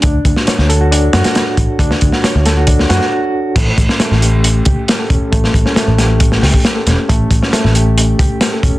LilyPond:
<<
  \new Staff \with { instrumentName = "Reed electric piano" } { \time 4/4 \key d \major \tempo 4 = 136 d'8. fis'16 cis''16 r16 a'16 fis'16 d'16 r16 fis'16 r4 r16 | d'8. fis'16 cis''16 r16 a'16 fis'16 d'16 r16 fis'16 r4 r16 | a8. cis'16 a16 r16 g'16 r8. g'16 r8 a'16 cis'16 r16 | a8. cis'16 a16 r16 g'16 r8. g'16 r8 a'16 cis'16 r16 |
a8. cis'16 a16 r16 g'16 r8. g'16 r8 a'16 cis'16 r16 | }
  \new Staff \with { instrumentName = "Picked electric bass" } { \clef bass \time 4/4 \key d \major d,16 r16 d,16 r8 d,4 r16 fis,16 r8. a,,16 r16 | d,16 r16 d,16 r8 d,4 r16 fis,16 r4 r16 | a,,16 r16 a,,16 r8 a,,4 r16 cis,16 r8. e,,16 r16 | a,,16 r16 a,,16 r8 a,,4 r16 cis,16 r8. e,,16 r16 |
a,,16 r16 a,,16 r8 a,,4 r16 cis,16 r8. e,,16 r16 | }
  \new DrumStaff \with { instrumentName = "Drums" } \drummode { \time 4/4 <hh bd>8 <hh bd>16 sn16 <hh sn>16 sn16 hh8 hh8 <hh sn>16 <hh sn>16 <hh sn>8 <hh bd>8 | <hh bd>16 sn16 <hh bd>16 sn16 <hh sn>8 <hh sn>8 <hh bd>16 sn16 <hh sn>16 sn16 r4 | <cymc hh bd>8 <hh bd>16 sn16 <hh sn>16 sn16 hh8 hh8 <hh bd>8 <hh sn>8 <hh bd>8 | <hh bd>16 sn16 <hh bd>16 sn16 <hh sn>8 <hh sn>8 <hh bd>16 sn16 <hho sn>16 bd16 <hh sn>8 <hh sn>8 |
<hh bd>8 <hh bd>16 sn16 <hh sn>16 sn16 hh8 hh8 <hh bd>8 <hh sn>8 <hh bd>8 | }
>>